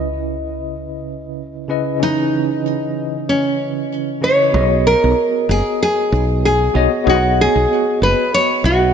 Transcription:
0.00 4.51 C#2 medium
0.00 1.65 C#3 medium
0.00 1.66 C#4 medium
0.00 1.66 E4 medium
0.00 1.67 B4 medium
0.00 1.68 D#5 medium
1.68 1.97 C#3 medium
1.68 1.98 C#4 medium
1.68 1.98 E4 medium
1.68 1.98 B4 medium
1.68 1.98 D#5 medium
1.98 4.17 C#3 medium
1.98 4.19 E3 medium
1.98 4.18 C#4 medium
2.02 3.29 D#4 loud
2.02 4.20 B4 medium
2.02 4.20 D#5 medium
3.29 4.19 C#4 medium
4.21 4.50 C#3 medium
4.21 4.50 C#4 medium
4.21 4.51 E4 medium
4.21 4.51 B4 medium
4.21 4.86 C#5 medium
4.21 4.51 D#5 medium
4.51 4.94 B1 loud
4.51 6.70 B3 medium
4.51 6.71 F#4 medium
4.51 6.71 G#4 medium
4.51 6.72 C#5 medium
4.56 6.73 D#5 medium
4.87 5.51 A#4 loud
5.04 5.13 B1 medium
5.49 5.60 F#1 medium
5.49 5.81 G#4 medium
5.83 6.44 G#4 medium
6.12 6.68 B1 medium
6.45 6.90 G#4 medium
6.74 6.87 B1 medium
6.74 7.03 B3 medium
6.74 7.03 F#4 medium
6.74 7.03 G#4 medium
6.74 7.04 C#5 medium
6.74 7.04 D#5 loud
7.04 7.46 B1 loud
7.04 8.94 B3 medium
7.04 8.94 F#4 medium
7.04 8.94 G#4 medium
7.04 8.94 C#5 medium
7.09 7.40 F#4 medium
7.09 8.94 D#5 medium
7.41 7.99 G#4 medium
7.56 7.65 B1 medium
8.02 8.13 F#1 medium
8.02 8.34 B4 medium
8.34 8.63 C#5 loud
8.64 8.94 B1 loud
8.64 8.94 F#4 medium

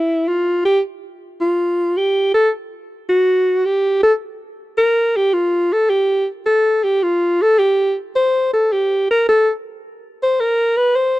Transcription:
0.00 0.29 E4 medium
0.28 0.64 F4 medium
0.65 0.80 G4 medium
1.41 1.98 F4 medium
1.97 2.34 G4 medium
2.34 2.49 A4 medium
3.09 3.67 F#4 medium
3.65 4.02 G4 medium
4.03 4.13 A4 medium
4.78 5.18 A#4 medium
5.17 5.35 G4 medium
5.33 5.74 F4 medium
5.73 5.91 A4 medium
5.90 6.27 G4 medium
6.46 6.85 A4 medium
6.84 7.04 G4 medium
7.03 7.43 F4 medium
7.42 7.60 A4 medium
7.59 7.96 G4 medium
8.16 8.50 C5 medium
8.53 8.74 A4 medium
8.72 9.09 G4 medium
9.11 9.25 A#4 medium
9.29 9.51 A4 medium
10.23 10.42 C5 medium
10.40 10.78 A#4 medium
10.77 10.97 B4 medium
10.95 11.20 C5 medium

